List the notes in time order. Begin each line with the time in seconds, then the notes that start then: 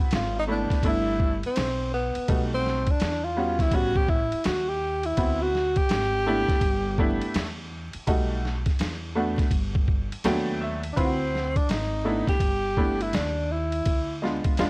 Already playing: B3 C4 E4 F#4
0.11 G#1, snare, hi-hat pedal, ride
0.15 F4
0.39 D#4
0.47 A3 B3 D4 E4
0.70 muted upright bass stroke, kick, snare, ride
0.83 G1 A3 B3 D4 E4, kick, ride
0.88 E4
1.20 kick
1.43 C4, muted upright bass stroke, ride
1.56 B1, snare, hi-hat pedal, ride
1.94 B3
2.15 muted upright bass stroke, ride
2.28 B1 G3 A3 D#4 F#4, kick, ride
2.54 C4
2.66 snare
2.87 D4, muted upright bass stroke, kick, ride
3.00 E2, snare, hi-hat pedal, ride
3.24 F4
3.37 G3 B3 C#4 F#4
3.59 E4, kick, snare, ride
3.71 A1 G3 B3 C#4 F#4, kick, ride
3.96 G4, kick
4.08 E4, kick
4.32 muted upright bass stroke, ride
4.44 D#2 F#4, snare, hi-hat pedal, ride
4.68 G4
5.03 E4, ride
5.17 D2 B3 C4 E4 F#4, kick, ride
5.42 F#4
5.55 snare
5.76 G4, muted upright bass stroke, kick, ride
5.89 G#1, snare, hi-hat pedal, ride
6.26 A3 B3 D4 E4
6.48 muted upright bass stroke, kick, snare, ride
6.61 G1, kick, ride
6.98 A3 B3 D4 E4, kick
7.22 muted upright bass stroke, ride
7.34 E2, snare, hi-hat pedal, ride
7.93 muted upright bass stroke, ride
8.07 B1 G3 A3 D#4 F#4, kick, ride
8.45 snare
8.66 kick, snare, ride
8.79 E2, snare, hi-hat pedal, ride
9.15 A3 B3 D4 F#4
9.38 muted upright bass stroke, kick, snare, ride
9.51 G1, kick, ride
9.75 kick
9.88 kick
10.11 muted upright bass stroke, ride
10.24 D#2 F#3 A3 B3 D4 G5, snare, hi-hat pedal, ride
10.62 E5
10.83 ride
10.93 C4 D4 E4 B4
10.97 D2 F4, kick, ride
11.04 F#4
11.35 snare
11.56 D4, muted upright bass stroke, kick, ride
11.69 G#1 D#4, snare, hi-hat pedal, ride
12.04 A3 B3 D4 E4
12.27 G4, muted upright bass stroke, kick, snare, ride
12.40 G1, kick, ride
12.77 A3 B3 D4 E4, kick
13.01 E4, ride
13.13 D#2 D4, snare, hi-hat pedal, ride
13.52 E4
13.72 ride
13.85 D2, kick, ride
14.22 G#3 B3 D4 F4, snare
14.44 muted upright bass stroke, kick, ride
14.57 E2 G#3 B3 D4 F4, snare, hi-hat pedal, ride